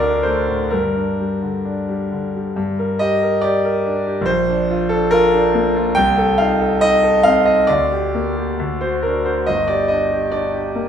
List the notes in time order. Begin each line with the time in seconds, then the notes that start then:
Already playing: D2 D5
0.00 D4 A#4
0.23 A3 C5
0.49 A2
0.70 G2 A#4
0.96 D4
1.20 G3
1.42 D3
1.65 D4
1.88 G3
2.12 D3
2.35 G3
2.56 G2
2.79 A#4
2.99 G4 D#5
3.23 A#4
3.41 G4 D5
3.65 A#4
3.86 D4
4.07 G4
4.21 A#1
4.26 C5
4.49 D4
4.70 F4
4.89 D4 A4
5.11 F4 A#4
5.33 D4
5.54 A#3
5.76 F4
5.95 C2 G5
6.18 A4
6.38 D#4 F5
6.61 A4
6.81 D#4 D#5
7.03 A4
7.23 C4 F5
7.45 D#4 D#5
7.67 D2 D5
7.92 G4
8.15 A#3
8.37 G4
8.59 D2
8.81 F#4 C5
9.02 D4 A#4
9.25 F#4 C5
9.46 G1 D#5
9.68 G4 D5
9.88 D4 D#5
10.12 G4
10.32 D4 D5
10.54 G4
10.75 A#3